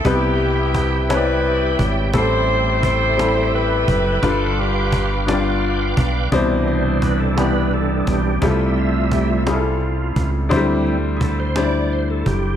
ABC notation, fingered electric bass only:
X:1
M:6/8
L:1/8
Q:3/8=57
K:C
V:1 name="Fingered electric bass" clef=bass
C,,4- C,, _A,,, | A,,,4- A,,, ^F,,, | G,,,4- G,,, B,,, | C,,4- C,, B,,, |
C,,4- C,, _D,, | D,,4- D,, ^F,,, |]